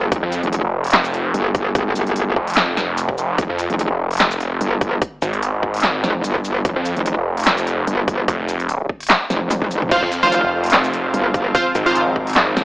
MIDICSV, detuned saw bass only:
0, 0, Header, 1, 2, 480
1, 0, Start_track
1, 0, Key_signature, -4, "minor"
1, 0, Tempo, 408163
1, 139, Time_signature, 4, 2, 24, 8
1, 14865, End_track
2, 0, Start_track
2, 0, Title_t, "Detuned saw bass"
2, 0, Program_c, 0, 39
2, 269, Note_on_c, 0, 41, 97
2, 488, Note_off_c, 0, 41, 0
2, 750, Note_on_c, 0, 29, 97
2, 1081, Note_off_c, 0, 29, 0
2, 1099, Note_on_c, 0, 29, 99
2, 1561, Note_off_c, 0, 29, 0
2, 2780, Note_on_c, 0, 29, 100
2, 3722, Note_off_c, 0, 29, 0
2, 3739, Note_on_c, 0, 29, 102
2, 3961, Note_off_c, 0, 29, 0
2, 4110, Note_on_c, 0, 41, 95
2, 4329, Note_off_c, 0, 41, 0
2, 4590, Note_on_c, 0, 29, 99
2, 4922, Note_off_c, 0, 29, 0
2, 4939, Note_on_c, 0, 29, 104
2, 5402, Note_off_c, 0, 29, 0
2, 6140, Note_on_c, 0, 32, 99
2, 7082, Note_off_c, 0, 32, 0
2, 7951, Note_on_c, 0, 41, 99
2, 8169, Note_off_c, 0, 41, 0
2, 8430, Note_on_c, 0, 29, 96
2, 8762, Note_off_c, 0, 29, 0
2, 8779, Note_on_c, 0, 29, 96
2, 9241, Note_off_c, 0, 29, 0
2, 9740, Note_on_c, 0, 29, 97
2, 10442, Note_off_c, 0, 29, 0
2, 11790, Note_on_c, 0, 41, 96
2, 12009, Note_off_c, 0, 41, 0
2, 12270, Note_on_c, 0, 29, 99
2, 12602, Note_off_c, 0, 29, 0
2, 12618, Note_on_c, 0, 29, 98
2, 13081, Note_off_c, 0, 29, 0
2, 13819, Note_on_c, 0, 32, 99
2, 14761, Note_off_c, 0, 32, 0
2, 14865, End_track
0, 0, End_of_file